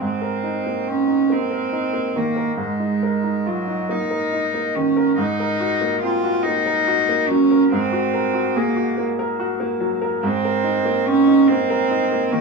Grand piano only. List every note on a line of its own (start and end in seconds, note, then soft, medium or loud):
0.01 2.54 G#2 soft
0.22 0.57 A#4 soft
0.43 0.79 D#4 soft
0.66 1.01 A#3 soft
0.87 1.09 C4 soft
1.07 1.43 D#4 soft
1.30 1.64 A#3 soft
1.51 1.85 A#4 soft
1.72 2.07 D#4 soft
1.93 2.28 A#3 soft
2.16 2.50 D#3 soft
2.36 2.71 A#4 soft
2.57 5.12 G#2 medium
2.80 3.15 D#4 soft
3.03 3.37 A#4 soft
3.24 3.59 D#4 soft
3.46 3.67 F4 soft
3.68 4.02 D#4 soft
3.89 4.23 A#3 soft
4.10 4.45 A#4 soft
4.33 4.66 D#4 medium
4.54 4.88 A#3 soft
4.76 5.09 D#3 soft
4.97 5.17 A#4 medium
5.18 7.66 G#2 medium
5.40 5.73 A#4 soft
5.60 5.94 F#4 soft
5.81 6.15 A#3 medium
6.03 6.23 C4 soft
6.23 6.57 F#4 soft
6.45 6.78 A#3 soft
6.66 6.99 A#4 medium
6.87 7.20 F#4 medium
7.09 7.41 A#3 medium
7.30 7.63 F#3 medium
7.51 7.84 A#4 medium
7.72 10.19 G#2 medium
7.92 8.25 F#4 medium
8.14 8.47 A#4 medium
8.34 8.67 F#4 medium
8.56 8.76 G#4 medium
8.76 9.09 F#4 soft
8.98 9.30 A#3 medium
9.19 9.52 A#4 medium
9.39 9.72 F#4 medium
9.60 9.93 A#3 medium
9.80 10.14 F#3 medium
10.01 10.22 A#4 medium
10.23 12.41 G#2 medium
10.45 10.77 A#4 medium
10.64 10.97 D#4 medium
10.85 11.19 A#3 medium
11.06 11.27 C4 medium
11.28 11.61 D#4 medium
11.49 11.82 A#3 medium
11.70 12.03 A#4 medium
11.91 12.24 D#4 medium
12.12 12.41 A#3 medium
12.32 12.41 D#3 medium